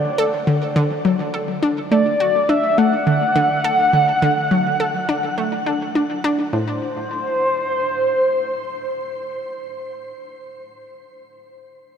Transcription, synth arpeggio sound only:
0.18 A4
0.47 D3
0.76 D3
1.05 F#3
1.34 A4
1.63 D4
1.91 A3
2.20 F#4
2.49 D4
2.78 A3
3.07 D3
3.36 D3
3.64 A4
3.93 D3
4.22 D3
4.51 F#3
4.80 A4
5.09 D4
5.38 A3
5.66 D4
5.95 D4
6.24 D4
6.53 A2

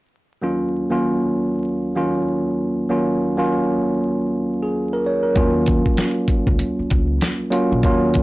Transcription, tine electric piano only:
0.42 D#2 F#3 A#3 C#4 F4
0.90 D#2 F#3 A#3 C#4 F4
1.95 D#2 F#3 A#3 C#4 F4
2.89 D#2 F#3 A#3 C#4 F4
3.37 D#2 F#3 A#3 C#4 F4
4.62 G#4
4.93 A#4
5.06 C#5
5.23 A#4
5.35 F#3 A#3 C#4 F4
7.50 F#3 A#3 C#4 F4
7.83 F#3 A#3 C#4 F4

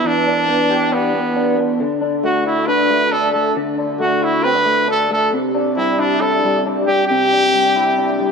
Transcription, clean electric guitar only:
Already playing: B3 D4 G4 B4
0.04 E3
0.27 D4
0.48 B3
0.70 G4
0.92 D4
1.14 B3
1.36 D4
1.58 B3
1.80 D3
2.01 D4
2.24 A3
2.45 F#4
2.68 D4
2.90 A3
3.12 D4
3.35 A3
3.56 D3
3.78 D4
4.00 A3
4.22 F#4
4.44 C4
4.55 D4
4.65 A3
4.88 D4
5.11 A3
5.33 C3
5.55 D4
5.77 G3
5.99 E4
6.22 D4
6.44 G3
6.66 D4
6.88 G3
7.10 C3
7.32 D4
7.54 G3
7.76 E4
7.98 D4
8.20 G3

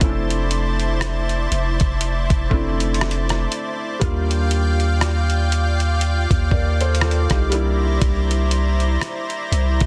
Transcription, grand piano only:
0.00 A3 C4 C#4
0.04 E4
0.09 D4
2.50 A3 C4 D4
2.54 E4
4.00 G3 A#3 D4
4.04 F4
6.52 A#4 D5
6.81 A4 C5
7.02 F4 A4
7.31 D#4 G4
7.50 G3 A#3 D4
7.54 E4

